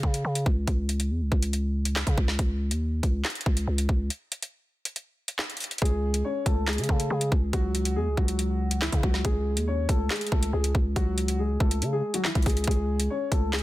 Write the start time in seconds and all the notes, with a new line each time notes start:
0.03 C#3, kick
0.14 closed hi-hat
0.25 C#3
0.35 closed hi-hat
0.46 C#2, kick
0.67 C#2, kick, closed hi-hat
0.89 closed hi-hat
1.00 closed hi-hat
1.10 E2
1.21 C#2
1.32 C#2, kick
1.43 closed hi-hat
1.53 closed hi-hat
1.85 closed hi-hat
1.96 snare, clap
2.07 C#3, kick, closed hi-hat
2.18 C#2, kick
2.28 snare
2.39 C#2, kick, closed hi-hat
2.71 D#2, closed hi-hat
3.03 C#2, kick, closed hi-hat
3.25 snare, clap, closed hi-hat
3.30 closed hi-hat
3.35 closed hi-hat
3.41 closed hi-hat
3.46 C#2, kick
3.57 closed hi-hat
3.67 C#2
3.78 closed hi-hat
3.89 C#2, kick
4.10 closed hi-hat
4.32 closed hi-hat
4.42 closed hi-hat
4.85 closed hi-hat
4.96 closed hi-hat
5.28 closed hi-hat
5.39 snare, clap
5.50 closed hi-hat
5.57 closed hi-hat, open hi-hat
5.64 closed hi-hat
5.71 closed hi-hat
5.78 C#2 G#4, kick, closed hi-hat
5.82 G#3, closed hi-hat
6.14 closed hi-hat
6.25 C#4 C#5
6.46 C#2 A3 A4, kick, closed hi-hat
6.67 G#3 G#4, snare, clap, closed hi-hat
6.73 closed hi-hat
6.78 C#3, closed hi-hat
6.84 closed hi-hat
6.89 C#3 A3 A4, kick
7.00 closed hi-hat
7.10 C#3 G#3 G#4
7.21 closed hi-hat
7.32 C#2, kick
7.53 C#2 F#3 F#4, kick, closed hi-hat
7.75 closed hi-hat
7.85 closed hi-hat
7.96 E2 G#3 G#4
8.07 C#2
8.17 C#2 F#3 F#4, kick
8.28 closed hi-hat
8.39 closed hi-hat
8.71 closed hi-hat
8.82 E3 E4, snare, clap
8.92 C#3, kick, closed hi-hat
9.03 C#2 F#3 F#4, kick
9.14 snare
9.25 C#2 G#3 G#4, kick, closed hi-hat
9.57 D#2, closed hi-hat
9.68 C#4 C#5
9.89 C#2 A3 A4, kick, closed hi-hat
10.10 G#3 G#4, snare, clap, closed hi-hat
10.16 closed hi-hat
10.21 closed hi-hat
10.27 closed hi-hat
10.32 C#2 A3 A4, kick
10.43 closed hi-hat
10.53 C#2 G#3 G#4
10.64 closed hi-hat
10.75 C#2, kick
10.96 C#2 F#3 F#4, kick, closed hi-hat
11.18 closed hi-hat
11.28 closed hi-hat
11.39 G#3 G#4
11.60 C#2 A3 A4, kick
11.71 closed hi-hat
11.82 C#3, closed hi-hat
11.93 G#3 G#4
12.14 F#3 F#4, closed hi-hat
12.25 E3 E4, snare, clap
12.35 C#2, kick, closed hi-hat
12.42 C#2 G#4, kick, closed hi-hat, open hi-hat
12.47 G#3, closed hi-hat
12.57 closed hi-hat
12.64 C#2 G#4, kick, closed hi-hat
12.68 G#3, closed hi-hat
13.00 closed hi-hat
13.10 C#4 C#5
13.32 C#2 A3 A4, kick, closed hi-hat
13.53 G#3 G#4, snare, clap, closed hi-hat
13.59 closed hi-hat